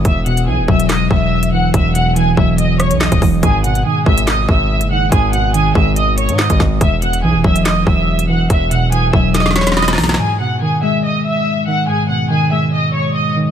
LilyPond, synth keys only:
\new Staff \with { instrumentName = "Synth keys" } { \clef bass \time 4/4 \key gis \minor \tempo 4 = 142 e,8 b,8 e8 fis2 e8 | e,8 b,8 e8 fis2 e8 | gis,8 b,8 dis8 gis2 dis8 | gis,8 b,8 dis8 gis2 dis8 |
e,8 b,8 e8 fis2 e8 | e,8 b,8 e8 fis2 e8 | gis,8 b,8 dis8 gis2 dis8 | gis,8 b,8 dis8 gis2 dis8 | }